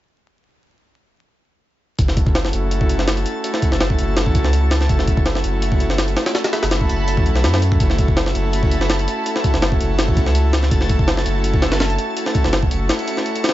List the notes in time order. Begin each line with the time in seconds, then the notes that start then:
1.99 F#1 A3 C#4 E4 F#4 A4 A5 A6, kick, closed hi-hat
2.08 snare
2.17 kick, closed hi-hat
2.26 F#1 A3 C#4 E4 F#4 A4, kick
2.35 snare, closed hi-hat
2.45 snare
2.53 F#1, closed hi-hat
2.71 closed hi-hat
2.81 kick
2.89 closed hi-hat
2.99 snare
3.08 snare, closed hi-hat
3.17 closed hi-hat
3.26 closed hi-hat
3.44 A3 C#4 E4 F#4 A4, closed hi-hat
3.54 snare
3.62 kick, closed hi-hat
3.72 F#1 A3 C#4 E4 F#4 A4, snare
3.80 snare, closed hi-hat
3.90 kick
3.98 F#1, closed hi-hat
4.17 snare, closed hi-hat
4.26 A1, kick
4.35 C#2, kick, closed hi-hat
4.45 snare
4.53 closed hi-hat
4.71 snare, closed hi-hat
4.81 snare
4.89 F#1 A3 C#4 E4 F#4 A4 B5, kick, closed hi-hat
4.99 snare
5.07 kick, closed hi-hat
5.17 F#1 A3 C#4 E4 F#4 A4, kick
5.26 snare, closed hi-hat
5.35 snare
5.44 F#1, closed hi-hat
5.62 closed hi-hat
5.72 kick
5.80 closed hi-hat
5.90 snare
5.98 snare, closed hi-hat
6.08 closed hi-hat
6.17 snare, closed hi-hat
6.26 snare, closed hi-hat
6.35 A3 C#4 E4 F#4 A4, snare, closed hi-hat
6.44 snare, closed hi-hat
6.53 snare, closed hi-hat
6.63 F#1 A3 C#4 E4 F#4 A4, snare, closed hi-hat
6.71 snare, closed hi-hat
6.81 kick
6.89 F#1, closed hi-hat
7.08 closed hi-hat
7.17 A1, kick
7.26 B1, closed hi-hat
7.36 snare
7.44 F#2, snare, closed hi-hat
7.54 snare, closed hi-hat
7.62 closed hi-hat
7.72 kick
7.80 F#1 A3 C#4 E4 F#4 A4 A6, kick, closed hi-hat
7.90 snare
7.98 kick, closed hi-hat
8.08 F#1 A3 C#4 E4 F#4 A4, kick
8.17 snare, closed hi-hat
8.26 snare
8.35 F#1, closed hi-hat
8.53 closed hi-hat
8.63 kick
8.71 closed hi-hat
8.81 snare
8.90 snare, closed hi-hat
8.99 closed hi-hat
9.08 closed hi-hat
9.26 A3 C#4 E4 F#4 A4, closed hi-hat
9.36 snare
9.44 kick, closed hi-hat
9.54 F#1 A3 C#4 E4 F#4 A4, snare
9.62 snare, closed hi-hat
9.72 kick
9.80 F#1, closed hi-hat
9.99 snare, closed hi-hat
10.08 A1, kick
10.17 C#2, kick, closed hi-hat
10.26 snare
10.35 closed hi-hat
10.53 snare, closed hi-hat
10.63 snare
10.71 F#1 A3 C#4 E4 F#4 A4 C#7, kick, closed hi-hat
10.81 snare
10.89 kick, closed hi-hat
10.99 F#1 A3 C#4 E4 F#4 A4, kick
11.08 snare, closed hi-hat
11.17 snare
11.26 F#1, closed hi-hat
11.44 closed hi-hat
11.54 kick
11.62 snare, closed hi-hat
11.72 snare, closed hi-hat
11.80 snare, closed hi-hat
11.90 closed hi-hat
11.98 closed hi-hat
12.17 A3 C#4 E4 F#4 A4, closed hi-hat
12.26 snare
12.35 kick, closed hi-hat
12.44 F#1 A3 C#4 E4 F#4 A4, snare
12.53 snare, closed hi-hat
12.63 kick
12.71 F#1, closed hi-hat
12.89 snare, closed hi-hat
12.99 closed hi-hat
13.08 closed hi-hat
13.17 snare
13.26 closed hi-hat
13.36 closed hi-hat
13.44 snare, closed hi-hat
13.49 snare, closed hi-hat